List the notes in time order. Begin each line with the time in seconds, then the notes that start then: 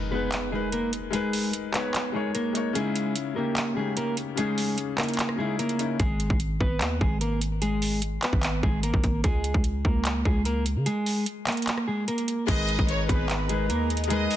Already playing: G#3 D#4 A#4 B4, impact
0.11 G#3 B3 D#4 G#4 B4
0.15 B4
0.32 clap, closed hi-hat
0.51 G#3 D#4 G#4 A#4
0.55 B4
0.72 A#3 A#4, closed hi-hat
0.93 closed hi-hat
1.10 G#3 D#4 G#4 A#4, closed hi-hat
1.15 B4
1.33 open hi-hat
1.53 closed hi-hat
1.72 G#3 B3 D#4 B4, clap, closed hi-hat
1.76 C#5
1.94 clap, closed hi-hat
2.12 G#3 D#4 G#4 A#4
2.16 C#5
2.35 A#3 A#4, closed hi-hat
2.53 G#3 D#4 A#4, closed hi-hat
2.57 C#5
2.73 C#3 G#3 C#4 D#4 G#4, closed hi-hat
2.77 E4
2.96 closed hi-hat
3.16 closed hi-hat
3.34 C#3 A#3 C#4 D#4 A#4
3.38 G4
3.57 clap, closed hi-hat
3.75 C#3 G#3 C#4 D#4 G#4
3.79 G4
3.97 A#3 A#4, closed hi-hat
4.17 closed hi-hat
4.35 C#3 G#3 C#4 D#4 G#4, closed hi-hat
4.40 G#4
4.58 open hi-hat
4.78 closed hi-hat
4.96 C#3 A#3 C#4 D#4 A#4, cross-stick, clap, closed hi-hat
5.01 E4, closed hi-hat
5.08 closed hi-hat
5.14 closed hi-hat
5.19 clap, closed hi-hat
5.29 cross-stick
5.36 C#3 G#3 C#4 D#4 G#4
5.40 E4
5.59 A#3 A#4, closed hi-hat
5.69 closed hi-hat
5.78 C#3 C#4 D#4, closed hi-hat
5.82 E4
6.00 G#1 G#3 G#4, kick, closed hi-hat
6.20 closed hi-hat
6.30 G#1, kick
6.40 closed hi-hat
6.60 G#1 B3 B4, kick
6.81 D#2, clap, closed hi-hat
7.01 G#1 G#3 G#4, kick
7.21 A#3 A#4, closed hi-hat
7.41 closed hi-hat
7.62 G#3 G#4, closed hi-hat
7.82 open hi-hat
8.02 closed hi-hat
8.23 B3 B4, clap, closed hi-hat
8.33 G#1, kick
8.43 clap, closed hi-hat
8.63 G#1 G#3 G#4, kick
8.83 A#3 A#4, closed hi-hat
8.94 G#1, kick
9.04 G#1, kick, closed hi-hat
9.24 C#2 G#3 G#4, kick, closed hi-hat
9.44 closed hi-hat
9.54 C#2, kick
9.64 closed hi-hat
9.85 C#2 A#3 A#4, kick
10.05 clap, closed hi-hat
10.25 C#2 G#3 G#4, kick
10.45 A#3 A#4, closed hi-hat
10.66 closed hi-hat
10.76 C#3
10.86 G#3 G#4, closed hi-hat
11.06 open hi-hat
11.26 closed hi-hat
11.47 A#3 A#4, cross-stick, clap, closed hi-hat
11.52 closed hi-hat
11.57 closed hi-hat
11.62 closed hi-hat
11.67 clap, closed hi-hat
11.78 cross-stick
11.88 G#3 G#4
12.08 A#3 A#4, closed hi-hat
12.18 closed hi-hat
12.28 closed hi-hat
12.47 G#1 G#3 D#4 G#4 A#4 D#5 A#5, kick, closed hi-hat, crash
12.51 B4
12.69 closed hi-hat
12.79 G#1, kick
12.89 C#5, closed hi-hat
13.08 G#1 G#3 B3 D#4 G#4 B4, kick, closed hi-hat
13.12 B4
13.30 clap, closed hi-hat
13.48 G#3 D#4 G#4 A#4, closed hi-hat
13.52 B4
13.70 D#2 A#3 A#4, closed hi-hat
13.90 closed hi-hat
13.97 closed hi-hat
14.04 G#3, closed hi-hat
14.09 G#3 D#4 G#4 A#4 B4 D#5, closed hi-hat
14.31 open hi-hat